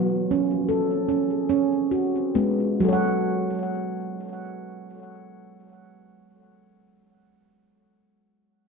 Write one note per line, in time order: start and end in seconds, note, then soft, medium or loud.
0.00 0.24 F#3 medium
0.00 0.69 B3 medium
0.31 1.07 C#4 medium
0.69 1.08 A4 medium
1.09 1.48 C#4 medium
1.49 2.21 C#4 medium
1.91 2.35 F#4 medium
2.35 2.73 G#3 medium
2.35 2.80 B3 medium
2.80 6.56 F#3 medium
2.80 6.56 F#4 soft
2.85 6.60 A4 soft
2.85 6.64 C#5 medium
2.93 6.68 F#5 soft